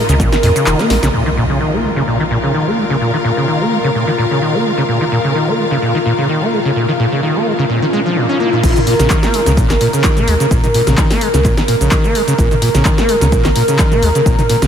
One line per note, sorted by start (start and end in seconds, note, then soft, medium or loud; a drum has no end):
0.00 1.12 F4 medium
0.00 1.14 A#4 medium
0.00 1.15 A#4 medium
0.00 1.74 D#5 medium
0.09 0.24 C#2 medium
0.09 0.15 C#3 loud
0.09 closed hi-hat medium
0.09 cabasa medium
0.20 0.30 A#2 medium
0.20 kick loud
0.20 closed hi-hat medium
0.20 cabasa medium
0.32 0.36 D#3 loud
0.32 snare medium
0.32 closed hi-hat soft
0.32 cabasa soft
0.43 0.52 F2 medium
0.43 0.50 A#2 loud
0.43 open hi-hat loud
0.56 0.65 C#3 medium
0.56 closed hi-hat medium
0.56 cabasa medium
0.66 0.75 F1 loud
0.66 0.81 D#3 medium
0.66 clap loud
0.66 closed hi-hat medium
0.66 cabasa medium
0.79 0.92 A#3 medium
0.79 snare medium
0.79 closed hi-hat soft
0.79 cabasa soft
0.90 0.99 A#1 medium
0.90 0.97 G#3 medium
0.90 snare medium
0.90 open hi-hat loud
1.03 1.10 A#1 medium
1.03 1.09 C#3 loud
1.03 snare medium
1.03 closed hi-hat medium
1.03 cabasa medium
1.13 1.24 A#2 medium
1.13 8.65 F4 medium
1.13 8.64 F4 medium
1.13 closed hi-hat medium
1.13 impact medium
1.26 1.30 D#3 loud
1.26 closed hi-hat soft
1.37 1.44 A#2 medium
1.37 closed hi-hat medium
1.50 1.59 C#3 medium
1.50 closed hi-hat soft
1.55 8.64 A#4 medium
1.61 1.75 D#3 medium
1.61 closed hi-hat medium
1.73 1.85 A#3 medium
1.73 closed hi-hat soft
1.84 1.91 G#3 medium
1.84 closed hi-hat medium
1.95 2.02 C#3 loud
1.95 8.64 F5 medium
1.95 closed hi-hat medium
2.07 2.18 A#2 medium
2.07 closed hi-hat soft
2.20 2.24 D#3 loud
2.31 2.38 A#2 loud
2.31 closed hi-hat medium
2.44 2.52 C#3 medium
2.54 2.68 D#3 medium
2.67 2.79 A#3 medium
2.78 2.85 G#3 medium
2.90 2.96 C#3 medium
3.01 3.12 A#2 medium
3.14 3.17 D#3 medium
3.25 3.31 A#2 medium
3.37 3.46 C#3 medium
3.48 3.62 D#3 medium
3.61 3.73 A#3 medium
3.72 3.78 G#3 medium
3.84 3.90 C#3 loud
3.95 4.05 A#2 medium
4.08 4.11 D#3 loud
4.18 4.25 A#2 loud
4.31 4.40 C#3 medium
4.42 4.56 D#3 medium
4.54 4.67 A#3 medium
4.65 4.72 G#3 medium
4.78 4.84 C#3 medium
4.89 4.99 A#2 medium
4.89 riser medium
5.01 5.05 D#3 medium
5.12 5.19 A#2 loud
5.24 5.33 C#3 medium
5.35 5.49 D#3 medium
5.48 5.60 A#3 medium
5.59 5.66 G#3 medium
5.59 closed hi-hat medium
5.71 5.77 C#3 loud
5.82 5.93 A#2 medium
5.95 5.98 D#3 loud
6.06 6.13 A#2 loud
6.18 6.27 C#3 medium
6.29 6.43 D#3 medium
6.42 6.54 A#3 medium
6.53 6.60 G#3 medium
6.53 closed hi-hat medium
6.65 6.71 C#3 loud
6.76 6.86 A#2 medium
6.89 6.92 D#3 loud
6.99 7.06 A#2 loud
6.99 closed hi-hat medium
7.12 7.21 C#3 medium
7.23 7.37 D#3 medium
7.36 7.48 A#3 medium
7.46 7.53 G#3 medium
7.46 closed hi-hat medium
7.59 7.65 C#3 loud
7.59 closed hi-hat soft
7.70 7.80 A#2 medium
7.82 7.86 D#3 loud
7.93 8.00 G#3 loud
7.93 closed hi-hat medium
8.06 8.18 F3 medium
8.16 8.27 A#2 medium
8.16 closed hi-hat soft
8.29 8.38 C#4 medium
8.40 8.50 A#3 medium
8.40 closed hi-hat medium
8.53 8.62 A#2 medium
8.63 8.72 A#1 loud
8.63 8.74 A#2 medium
8.63 14.67 A#4 medium
8.63 kick loud
8.63 closed hi-hat medium
8.63 crash loud
8.63 cabasa medium
8.76 8.80 D#3 loud
8.76 closed hi-hat soft
8.76 mid tom medium
8.76 cabasa soft
8.87 8.94 A#2 loud
8.87 open hi-hat loud
8.99 9.07 A#1 loud
8.99 9.09 C#3 medium
8.99 snare medium
8.99 closed hi-hat medium
8.99 mid tom medium
8.99 cabasa medium
9.10 9.25 D#3 medium
9.10 kick loud
9.10 clap loud
9.10 closed hi-hat medium
9.10 cabasa medium
9.23 9.35 A#3 medium
9.23 snare medium
9.23 closed hi-hat soft
9.23 cabasa soft
9.34 9.41 G#3 medium
9.34 open hi-hat loud
9.46 9.62 C#2 medium
9.46 9.52 C#3 loud
9.46 snare medium
9.46 closed hi-hat medium
9.46 cabasa medium
9.57 9.68 A#2 medium
9.57 kick loud
9.57 closed hi-hat medium
9.57 cabasa medium
9.69 9.77 A#1 loud
9.69 9.73 D#3 loud
9.69 snare medium
9.69 clap soft
9.69 closed hi-hat soft
9.69 cabasa soft
9.81 9.88 A#2 loud
9.81 open hi-hat loud
9.93 10.02 C#3 medium
9.93 closed hi-hat medium
9.93 cabasa medium
10.04 10.18 D#3 medium
10.04 kick loud
10.04 clap loud
10.04 closed hi-hat medium
10.04 cabasa medium
10.17 10.29 A#3 medium
10.17 closed hi-hat soft
10.17 mid tom medium
10.17 cabasa soft
10.28 10.36 D#2 medium
10.28 10.35 G#3 medium
10.28 open hi-hat loud
10.40 10.46 C#3 loud
10.40 closed hi-hat medium
10.40 cabasa medium
10.51 10.60 A#1 loud
10.51 10.62 A#2 medium
10.51 kick loud
10.51 closed hi-hat medium
10.51 cabasa medium
10.64 10.67 D#3 loud
10.64 closed hi-hat soft
10.64 mid tom medium
10.64 cabasa soft
10.74 10.81 A#2 loud
10.74 open hi-hat loud
10.87 10.95 A#1 medium
10.87 10.96 C#3 medium
10.87 snare medium
10.87 closed hi-hat medium
10.87 mid tom medium
10.87 cabasa medium
10.97 11.12 D#3 medium
10.97 kick loud
10.97 clap loud
10.97 closed hi-hat medium
10.97 cabasa medium
11.11 11.23 A#3 medium
11.11 snare medium
11.11 open hi-hat medium
11.11 cabasa soft
11.21 11.28 G#3 medium
11.21 open hi-hat loud
11.34 11.49 C#2 medium
11.34 11.40 C#3 loud
11.34 snare medium
11.34 closed hi-hat medium
11.34 cabasa medium
11.44 11.55 A#2 medium
11.44 kick loud
11.44 clap soft
11.44 closed hi-hat medium
11.44 cabasa medium
11.57 11.61 D#3 loud
11.57 snare medium
11.57 closed hi-hat soft
11.57 cabasa soft
11.68 11.75 A#2 loud
11.68 open hi-hat loud
11.81 11.88 A#1 medium
11.81 11.90 C#3 medium
11.81 closed hi-hat medium
11.81 cabasa medium
11.91 12.06 D#3 medium
11.91 kick loud
11.91 clap loud
11.91 closed hi-hat medium
11.91 cabasa medium
12.04 12.17 A#3 medium
12.04 closed hi-hat soft
12.04 cabasa soft
12.15 12.22 G#3 medium
12.15 open hi-hat loud
12.28 12.34 C#3 loud
12.28 closed hi-hat medium
12.28 cabasa medium
12.38 12.47 A#1 loud
12.38 12.49 A#2 medium
12.38 kick loud
12.38 closed hi-hat medium
12.38 cabasa medium
12.51 12.55 D#3 loud
12.51 closed hi-hat soft
12.51 mid tom medium
12.51 cabasa soft
12.62 12.69 A#2 loud
12.62 open hi-hat loud
12.75 12.82 A#1 loud
12.75 12.84 C#3 medium
12.75 snare medium
12.75 closed hi-hat soft
12.75 mid tom medium
12.75 cabasa medium
12.85 13.00 D#3 medium
12.85 kick loud
12.85 clap loud
12.85 closed hi-hat medium
12.85 cabasa medium
12.98 13.11 A#3 medium
12.98 snare medium
12.98 closed hi-hat soft
12.98 cabasa soft
13.09 13.16 G#3 medium
13.09 open hi-hat loud
13.21 13.37 C#2 medium
13.21 13.28 C#3 loud
13.21 snare medium
13.21 closed hi-hat medium
13.21 cabasa medium
13.32 13.43 A#2 medium
13.32 kick loud
13.32 closed hi-hat soft
13.32 cabasa medium
13.44 13.52 A#1 loud
13.44 13.49 D#3 loud
13.44 snare medium
13.44 clap soft
13.44 closed hi-hat soft
13.44 cabasa soft
13.56 13.63 A#2 loud
13.56 open hi-hat loud
13.68 13.77 C#3 medium
13.68 closed hi-hat medium
13.68 cabasa medium
13.79 13.93 D#3 medium
13.79 kick loud
13.79 clap loud
13.79 closed hi-hat medium
13.79 cabasa medium
13.92 14.04 A#3 medium
13.92 closed hi-hat soft
13.92 mid tom medium
13.92 cabasa soft
14.03 14.11 D#2 medium
14.03 14.10 G#3 medium
14.03 open hi-hat loud
14.15 14.21 C#3 medium
14.15 closed hi-hat medium
14.15 cabasa medium
14.26 14.35 A#1 loud
14.26 14.36 A#2 medium
14.26 kick loud
14.26 closed hi-hat medium
14.26 cabasa medium
14.39 14.42 D#3 loud
14.39 closed hi-hat soft
14.39 mid tom medium
14.39 cabasa soft
14.49 14.56 A#2 loud
14.49 open hi-hat loud
14.62 14.67 A#1 medium
14.62 14.67 C#3 medium
14.62 snare medium
14.62 closed hi-hat soft
14.62 mid tom medium
14.62 cabasa medium